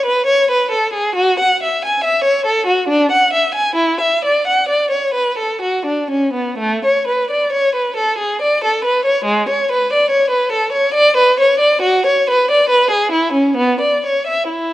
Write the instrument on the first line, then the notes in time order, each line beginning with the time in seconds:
violin
0.06 B4
0.27 C#5
0.51 B4
0.71 A4
0.94 G#4
1.16 F#4
1.40 F#5
1.63 E5
1.85 G#5
2.04 E5
2.24 C#5
2.46 A4
2.67 F#4
2.88 D4
3.12 F#5
3.33 E5
3.55 G#5
3.76 E4
4.01 E5
4.25 D5
4.47 F#5
4.69 D5
4.91 C#5
5.14 B4
5.38 A4
5.62 F#4
5.86 D4
6.11 C#4
6.34 B3
6.58 A3
6.85 C#5
7.08 B4
7.31 D5
7.53 C#5
7.76 B4
7.97 A4
8.18 G#4
8.42 D5
8.64 A4
8.85 B4
9.05 C#5
9.25 G#3
9.49 C#5
9.72 B4
9.93 D5
10.10 C#5
10.30 B4
10.52 A4
10.73 C#5
10.94 D5
11.17 B4
11.40 C#5
11.60 D5
11.82 F#4
12.06 C#5
12.30 B4
12.51 D5
12.70 B4
12.91 G#4
13.12 E4
13.33 C#4
13.57 B3
13.81 D5
14.06 C#5
14.27 E5
14.50 E4